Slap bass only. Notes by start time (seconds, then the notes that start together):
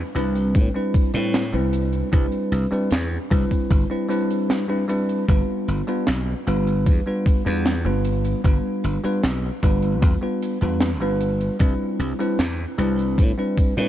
0.15 C2
0.55 A2
1.14 A2
1.54 C2
2.13 C2
2.52 C2
2.72 muted slap bass stroke
2.92 E2
3.31 C2
3.71 G1
5.28 G1
5.68 G1
6.08 B1
6.47 G1
6.87 E2
7.46 E2
7.85 G1
8.44 G1
8.84 G1
9.04 muted slap bass stroke
9.24 B1
9.63 G1
10.02 E2
10.62 E2
11.01 G1
11.60 C2
11.99 C2
12.39 E2
12.78 C2
13.18 A2
13.77 A2